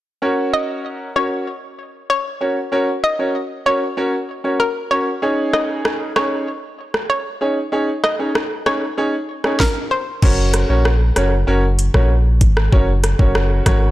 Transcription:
0.22 1.08 C#4 medium
0.22 1.08 F#4 medium
0.22 1.09 A#4 medium
0.22 1.09 C#5 medium
0.53 0.65 D#5 medium
1.16 1.45 C#4 medium
1.16 1.45 F#4 medium
1.16 1.45 A#4 medium
1.16 1.28 C#5 medium
1.16 1.45 C#5 medium
2.10 2.54 C#5 medium
2.41 2.56 C#4 medium
2.41 2.57 F#4 medium
2.41 2.57 A#4 medium
2.41 2.57 C#5 medium
2.72 2.88 C#4 medium
2.72 2.88 F#4 medium
2.72 2.88 A#4 medium
2.72 2.88 C#5 loud
3.04 3.16 D#5 medium
3.19 3.35 C#4 medium
3.19 3.35 F#4 medium
3.19 3.35 A#4 medium
3.19 3.35 C#5 medium
3.66 3.82 C#4 medium
3.66 3.82 F#4 medium
3.66 3.82 A#4 medium
3.66 3.78 C#5 medium
3.66 3.82 C#5 medium
3.97 4.13 C#4 medium
3.97 4.13 F#4 medium
3.97 4.13 A#4 medium
3.97 4.13 C#5 medium
4.44 4.60 C#4 medium
4.44 4.60 F#4 medium
4.44 4.60 A#4 medium
4.44 4.60 C#5 medium
4.60 4.72 A#4 medium
4.91 5.07 C#4 medium
4.91 5.07 F#4 medium
4.91 5.07 A#4 medium
4.91 5.03 C#5 medium
4.91 5.07 C#5 medium
5.22 6.09 C#4 medium
5.22 6.09 D#4 medium
5.22 6.09 G#4 medium
5.22 6.09 C#5 medium
5.53 5.65 D#5 medium
5.53 cross-stick medium
5.85 cross-stick loud
6.16 6.45 C#4 medium
6.16 6.45 D#4 medium
6.16 6.45 G#4 medium
6.16 6.28 C#5 medium
6.16 6.45 C#5 medium
6.16 cross-stick loud
6.94 cross-stick medium
7.10 7.54 C#5 medium
7.41 7.57 C#4 medium
7.41 7.57 D#4 medium
7.41 7.57 G#4 medium
7.41 7.57 C#5 medium
7.72 7.88 C#4 medium
7.72 7.88 D#4 medium
7.72 7.88 G#4 medium
7.72 7.88 C#5 loud
8.04 8.16 D#5 medium
8.04 cross-stick medium
8.19 8.35 C#4 medium
8.19 8.35 D#4 medium
8.19 8.35 G#4 medium
8.19 8.35 C#5 medium
8.35 cross-stick loud
8.66 8.82 C#4 medium
8.66 8.82 D#4 medium
8.66 8.82 G#4 medium
8.66 8.78 C#5 medium
8.66 8.82 C#5 medium
8.66 cross-stick loud
8.97 9.13 C#4 medium
8.97 9.13 D#4 medium
8.97 9.13 G#4 medium
8.97 9.13 C#5 loud
9.44 9.60 C#4 medium
9.44 9.60 D#4 medium
9.44 9.60 G#4 medium
9.44 9.60 C#5 medium
9.44 cross-stick medium
9.60 9.72 A#4 medium
9.60 kick loud
9.60 snare medium
9.91 10.03 C5 medium
10.22 10.64 F#1 loud
10.22 10.65 C#4 medium
10.22 10.66 F#4 medium
10.22 10.66 A#4 medium
10.22 10.66 C#5 loud
10.22 kick loud
10.22 crash medium
10.54 cross-stick medium
10.54 closed hi-hat medium
10.69 11.11 A#1 medium
10.69 10.85 C#4 medium
10.69 10.85 F#4 medium
10.69 10.85 A#4 medium
10.69 10.85 C#5 medium
10.85 cross-stick loud
11.16 11.44 F#1 medium
11.16 11.32 C#4 medium
11.16 11.32 F#4 medium
11.16 11.32 A#4 medium
11.16 11.32 C#5 medium
11.16 cross-stick loud
11.16 closed hi-hat medium
11.47 11.89 F#1 loud
11.47 11.63 C#4 medium
11.47 11.63 F#4 medium
11.47 11.63 A#4 medium
11.47 11.63 C#5 loud
11.79 closed hi-hat medium
11.94 12.43 A#1 medium
11.94 12.10 C#4 medium
11.94 12.10 F#4 medium
11.94 12.10 A#4 medium
11.94 12.10 C#5 medium
11.94 kick medium
11.94 cross-stick medium
12.41 12.69 G#1 medium
12.41 kick medium
12.41 closed hi-hat medium
12.57 cross-stick medium
12.72 13.14 F#1 loud
12.72 12.88 C#4 medium
12.72 12.88 F#4 medium
12.72 12.88 A#4 medium
12.72 12.88 C#5 loud
12.72 kick loud
13.04 cross-stick medium
13.04 closed hi-hat medium
13.19 13.61 F#1 medium
13.19 13.62 C#4 medium
13.19 13.62 F#4 medium
13.19 13.62 A#4 medium
13.19 13.62 C#5 medium
13.19 kick medium
13.35 cross-stick loud
13.66 13.91 G#1 medium
13.66 13.91 C#4 medium
13.66 13.91 F#4 medium
13.66 13.91 A#4 medium
13.66 13.91 C#5 medium
13.66 kick medium
13.66 cross-stick loud
13.66 closed hi-hat medium

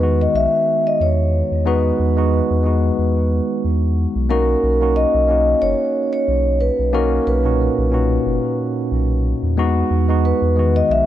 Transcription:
0.00 0.27 E2 loud
0.00 1.63 D#3 medium
0.00 1.65 G#3 medium
0.00 1.66 B3 medium
0.00 1.66 D#4 medium
0.00 0.03 F#4 medium
0.00 1.64 F#4 medium
0.00 0.22 B4 medium
0.21 0.28 D#5 medium
0.34 0.47 B1 medium
0.34 0.88 E5 loud
0.87 1.01 D#5 loud
1.00 1.43 E2 loud
1.00 1.63 C#5 medium
1.51 1.92 E2 medium
1.65 2.13 G#3 medium
1.65 2.13 B3 medium
1.65 2.13 D#4 medium
1.65 2.13 F#4 loud
1.65 3.60 B4 medium
1.99 2.42 E2 medium
2.17 2.61 G#3 medium
2.17 2.62 B3 medium
2.17 2.62 D#4 medium
2.17 2.62 F#4 medium
2.50 2.91 E2 loud
2.63 4.25 G#3 medium
2.63 4.26 B3 medium
2.63 4.27 D#4 medium
2.63 4.27 F#4 medium
2.98 3.41 E2 medium
3.64 4.07 E2 medium
4.15 4.56 B1 medium
4.29 4.76 A#3 medium
4.29 4.77 C#4 medium
4.29 4.77 D#4 medium
4.29 4.77 F#4 medium
4.29 4.92 A#4 medium
4.63 5.05 B1 loud
4.81 5.25 A#3 medium
4.81 5.25 C#4 medium
4.81 5.26 D#4 medium
4.81 5.26 F#4 medium
4.96 5.64 D#5 loud
5.14 5.55 B1 loud
5.27 6.89 A#3 medium
5.27 6.90 C#4 medium
5.27 6.91 D#4 medium
5.27 6.91 F#4 medium
5.62 5.75 F#1 medium
5.62 6.12 C#5 loud
6.13 6.62 C#5 loud
6.28 6.70 B1 medium
6.61 6.91 B4 medium
6.79 7.20 B1 medium
6.93 7.40 A#3 medium
6.93 7.40 C#4 medium
6.93 7.41 D#4 medium
6.93 7.41 F#4 loud
6.93 7.28 A#4 medium
7.27 7.69 B1 loud
7.27 8.55 B4 medium
7.44 7.89 A#2 medium
7.44 7.89 C#4 medium
7.44 7.89 D#4 medium
7.44 7.90 F#4 medium
7.78 8.19 B1 loud
7.91 9.53 A#2 medium
7.91 9.53 C#4 medium
7.91 9.54 D#4 medium
7.91 9.55 F#4 medium
8.26 8.38 F#1 medium
8.91 9.34 B1 loud
9.43 9.83 E2 medium
9.57 10.04 G#3 medium
9.57 10.04 B3 medium
9.57 10.05 D#4 medium
9.57 10.05 F#4 loud
9.90 10.33 E2 loud
10.08 10.53 G#3 medium
10.08 10.53 B3 medium
10.08 10.53 D#4 medium
10.08 10.54 F#4 medium
10.25 10.77 B4 medium
10.42 10.82 E2 loud
10.56 11.06 D#3 medium
10.56 11.06 G#3 medium
10.56 11.06 B3 medium
10.56 11.06 F#4 medium
10.76 10.89 D#5 medium
10.90 11.02 B1 medium
10.90 11.06 E5 loud

